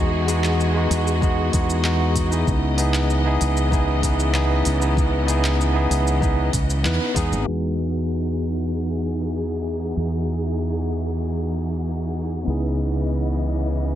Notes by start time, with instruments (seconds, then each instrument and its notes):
Already playing: fingered electric bass E2, string section E3 F#4 G#4 D#5, tine electric piano G#3 B3 D#4 F#4
0.27 tine electric piano G#3 B3 D#4 F#4, open hi-hat, shaker
0.44 clap, shaker
0.60 shaker
0.74 tine electric piano G#3 B3 D#4 F#4
0.91 fingered electric bass E2, open hi-hat, shaker
1.08 shaker
1.20 tine electric piano G#3 B3 D#4 F#4, kick, shaker
1.52 fingered electric bass E2, tine electric piano G#3 B3 D#4 F#4, kick, open hi-hat, shaker
1.70 shaker
1.83 tine electric piano G#3 B3 D#4 F#4, clap, shaker
2.16 kick, open hi-hat, shaker
2.30 tine electric piano B3 D#4 E4 G#4, shaker
2.47 fingered electric bass C#2, string section C#3 E3 B3, kick, shaker
2.77 tine electric piano B3 D#4 E4 G#4, open hi-hat, shaker
2.94 clap, shaker
3.10 shaker
3.24 tine electric piano B3 D#4 E4 G#4
3.41 fingered electric bass C#2, open hi-hat, shaker
3.57 shaker
3.71 tine electric piano B3 D#4 E4 G#4, kick, shaker
4.02 tine electric piano B3 D#4 E4 G#4, kick, open hi-hat, shaker
4.20 shaker
4.33 tine electric piano B3 D#4 E4 G#4, clap, shaker
4.65 fingered electric bass C#2, open hi-hat, shaker
4.80 tine electric piano B3 D#4 E4 G#4, shaker
4.97 kick, shaker
5.27 tine electric piano B3 D#4 E4 G#4, open hi-hat, shaker
5.44 clap, shaker
5.61 shaker
5.73 tine electric piano B3 D#4 E4 G#4
5.90 fingered electric bass C#2, open hi-hat, shaker
6.08 shaker
6.21 tine electric piano B3 D#4 E4 G#4, kick, shaker
6.53 fingered electric bass C#2, kick, open hi-hat, shaker
6.70 shaker
6.83 fingered electric bass E2, tine electric piano B3 D#4 E4 B4, clap, shaker
7.14 fingered electric bass E2, tine electric piano G#3 B3 D#4 G#4, kick, open hi-hat, shaker
7.32 fingered electric bass G#1, shaker
7.44 string section E3 D#4 F#4 G#4, tine electric piano B3 D#4 F#4
7.50 tine electric piano G#4
8.11 shaker
8.42 shaker
8.58 shaker
8.73 shaker
9.05 shaker
9.20 shaker
9.36 shaker
9.67 shaker
9.82 shaker
9.97 fingered electric bass E2, shaker
10.14 shaker
10.29 shaker
10.45 shaker
10.61 shaker
10.92 shaker
11.08 shaker
11.23 shaker
11.54 shaker
11.70 shaker
11.85 shaker
12.17 shaker
12.32 shaker
12.44 fingered electric bass C#2, string section C#3 E3 B3 D#5, tine electric piano B3 D#4 E4
12.48 tine electric piano G#4, shaker
12.64 shaker
12.80 shaker
12.95 shaker
13.11 shaker
13.42 shaker
13.58 shaker
13.73 shaker